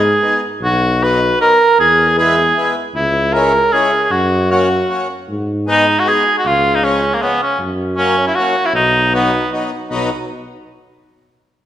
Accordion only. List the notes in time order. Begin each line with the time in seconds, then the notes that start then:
0.22 G#3 B3 D#4
1.02 F#3 B3 D#4
1.39 F#3 B3 D#4
2.17 G#3 B3 E4
2.57 G#3 B3 E4
3.33 G#3 C#4 E4
3.72 G#3 C#4 E4
4.50 A#3 C#4 F#4
4.89 A#3 C#4 F#4
5.67 G#3 B3 D#4
6.04 G#3 B3 D#4
6.81 F3 G#3 C#4
7.21 F3 G#3 C#4
7.97 F#3 A#3 C#4
8.38 F#3 A#3 C#4
9.12 F#3 B3 D#4
9.52 F#3 B3 D#4
9.90 F#3 B3 D#4